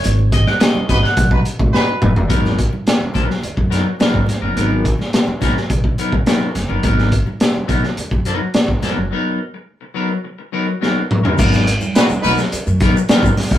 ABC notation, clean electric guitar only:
X:1
M:4/4
L:1/16
Q:1/4=106
K:G#m
V:1 name="Clean electric guitar"
c2 d f d2 d f2 z6 z | [F,B,DA]2 z4 [F,B,DA] z3 [F,B,DA] z [F,B,DA] z2 [F,B,DA] | [F,B,DA]2 z4 [F,B,DA] z3 [F,B,DA] z [F,B,DA] z2 [F,B,DA] | [F,B,DA]2 z4 [F,B,DA] z3 [F,B,DA] z3 [F,B,DA] z |
[F,B,DA]2 z4 [F,B,DA] z3 [F,B,DA] z [F,B,DA] z2 [F,B,DA] | [F,B,DA]2 z4 [F,B,DA] z3 [F,B,DA] z [F,B,DA] z2 [F,B,DA] |]